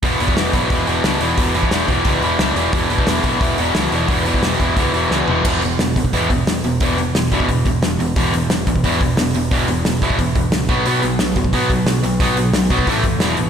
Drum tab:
CC |----------------|----------------|----------------|----------------|
HH |o-o-o-o-o-o-o-o-|o-o-o-o-o-o-o-o-|o-o-o-o-o-o-o-o-|o-o-o-o-o-o-----|
SD |----o-------o---|----o-------o---|----o-------o---|----o-------o---|
FT |----------------|----------------|----------------|--------------o-|
BD |o--o--o-o-------|o--o--o-o-------|o--o--o-o-------|o--o--o-o-------|

CC |x---------------|----------------|----------------|----------------|
HH |--o-o-o-o-o-o-o-|o-o-o-o-o-o-o-o-|o-o-o-o-o-o-o-o-|o-o-o-o-o-o-o-o-|
SD |----o-------o---|----o-------o---|----o-------o---|----o-------o---|
FT |----------------|----------------|----------------|----------------|
BD |o-----ooo-o-----|o-----ooo-o-----|o-----ooo-o-----|o-----ooo-o---o-|

CC |----------------|----------------|
HH |o-o-o-o-o-o-o-o-|o-o-o-o-o-o-o-o-|
SD |----o-------o---|----o-------o---|
FT |----------------|----------------|
BD |------ooo-o-----|o-----ooo-o-----|